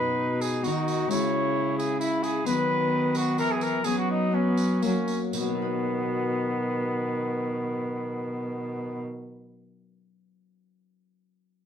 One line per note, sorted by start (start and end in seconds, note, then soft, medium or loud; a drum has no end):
0.00 0.68 B2 medium
0.00 1.12 B2 medium
0.00 0.61 B3 soft
0.00 0.61 D#4 medium
0.00 0.62 D#4 medium
0.00 0.63 F#4 medium
0.00 0.43 B4 loud
0.41 0.65 G#4 medium
0.41 tambourine medium
0.62 1.13 D#3 medium
0.62 1.11 B3 soft
0.62 1.12 D#4 medium
0.62 1.14 D#4 medium
0.62 1.11 F#4 medium
0.62 1.12 F#4 medium
0.62 tambourine medium
0.67 1.12 D#3 medium
0.88 tambourine soft
1.08 2.49 C#3 medium
1.08 2.47 G#3 soft
1.08 2.48 E4 soft
1.08 1.77 C#5 loud
1.08 tambourine medium
1.12 2.45 C#3 medium
1.12 2.01 E4 medium
1.77 1.99 G#4 medium
1.77 tambourine medium
2.00 2.25 E4 loud
2.00 2.47 E4 medium
2.00 tambourine medium
2.23 2.46 G#4 medium
2.23 tambourine medium
2.45 3.41 D#3 medium
2.45 3.86 F#3 medium
2.45 3.83 B3 medium
2.45 3.85 B3 medium
2.45 3.88 D#4 medium
2.45 3.18 B4 loud
2.45 tambourine medium
3.15 3.38 F#4 loud
3.15 tambourine medium
3.38 3.85 E3 medium
3.38 3.88 E3 medium
3.38 3.53 A#4 loud
3.38 tambourine soft
3.52 3.64 G#4 medium
3.61 3.86 A#4 loud
3.61 tambourine medium
3.84 4.82 F#3 medium
3.84 4.84 F#3 medium
3.84 4.31 B3 medium
3.84 4.33 B3 medium
3.84 4.33 C#4 medium
3.84 3.97 G#4 loud
3.84 tambourine medium
3.98 4.09 F#4 loud
4.11 4.36 D#4 loud
4.32 4.85 B3 medium
4.32 4.83 B3 medium
4.32 4.82 C#4 medium
4.32 4.83 C#4 medium
4.57 tambourine medium
4.82 4.92 F#3 medium
4.82 5.40 F#3 medium
4.82 5.35 A#3 medium
4.82 5.11 A#3 medium
4.82 5.36 C#4 medium
4.82 5.20 C#4 medium
4.82 tambourine medium
5.08 tambourine soft
5.33 9.24 B2 medium
5.33 9.01 B2 medium
5.33 9.00 D#3 medium
5.33 9.01 B3 medium
5.33 tambourine medium
5.41 9.10 F#3 medium
5.48 9.14 B3 medium
5.55 9.21 D#4 medium
5.62 9.28 B4 medium